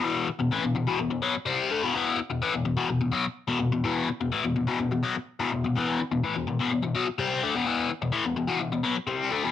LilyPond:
\new Staff \with { instrumentName = "Overdriven electric guitar" } { \clef bass \time 4/4 \key e \minor \tempo 4 = 126 <e, b, e>8 r16 <e, b,>16 <a, e>16 <e, b,>16 <e, b,>16 <e, b,>16 <e, b,>16 <e, b,>16 <b, fis>16 r16 <c g c'>8 <d a>16 <e, b,>16 | <e, b, e>8 r16 <e, b,>16 <a, e>16 <e, b,>16 <e, b,>16 <e, b,>16 <e, b,>16 <e, b,>16 <b, fis>16 r8 <e, b,>16 <e, b,>16 <e, b,>16 | <e, b, e>8 r16 <e, b,>16 <a, e>16 <e, b,>16 <e, b,>16 <e, b,>16 <e, b,>16 <e, b,>16 <b, fis>16 r8 <e, b,>16 <e, b,>16 <e, b,>16 | <e, b, e>8 r16 <e, b,>16 <a, e>16 <e, b,>16 <e, b,>16 <e, b,>16 <e, b,>16 <e, b,>16 <b, fis>16 r16 <c g c'>8 <d a>16 <e, b,>16 |
<e, b, e>8 r16 <e, b,>16 <a, e>16 <e, b,>16 <e, b,>16 <e, b,>16 <e, b,>16 <e, b,>16 <b, fis>16 r16 <c g c'>8 <d a>16 <e, b,>16 | }